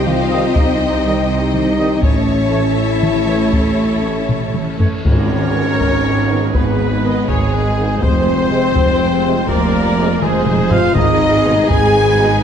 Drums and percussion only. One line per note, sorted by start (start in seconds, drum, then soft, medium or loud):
0.07 taiko mid medium
0.56 taiko medium
1.54 taiko mid medium
2.03 taiko medium
3.03 taiko mid medium
3.53 taiko medium
4.29 taiko low-mid medium
4.54 taiko mid medium
4.80 taiko low medium
5.05 taiko medium
5.05 tam-tam medium
5.80 taiko medium
6.55 taiko medium
7.29 taiko medium
8.02 taiko medium
8.76 taiko medium
9.49 taiko loud
10.22 taiko mid medium
10.46 taiko low-mid loud
10.71 taiko low medium
10.96 taiko medium
11.70 taiko loud